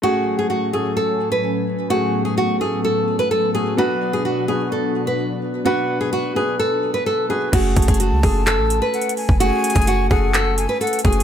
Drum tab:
CC |------------------------------------------------------------------------------------------------|------------------------------------------------------------------------------------------------|------------------------------------------------------------------------------------------------|------------------------------------------------------------------------------------------------|
HH |------------------------------------------------------------------------------------------------|------------------------------------------------------------------------------------------------|------------------------------------------------------------------------------------------------|------------------------------------------------------------------------------------------------|
CP |------------------------------------------------------------------------------------------------|------------------------------------------------------------------------------------------------|------------------------------------------------------------------------------------------------|------------------------------------------------------------------------------------------------|
BD |------------------------------------------------------------------------------------------------|------------------------------------------------------------------------------------------------|------------------------------------------------------------------------------------------------|------------------------------------------------------------------------------------------------|

CC |x-----------------------------------------------------------------------------------------------|------------------------------------------------------------------------------------------------|
HH |x-----------x--x--x--x--x-----------o-----------x-----------x-----------x---x---x---o-----------|x-----------x--x--x--x--x-----------------------x-----------x-----------x--x--x--x------x---x---|
CP |------------------------------------------------x-----------------------------------------------|------------------------------------------------x-----------------------------------------------|
BD |o-----------o-----o-----------------o-----------------------------------------------------o-----|------------------o-----------------o-----------------------------------------------o-----------|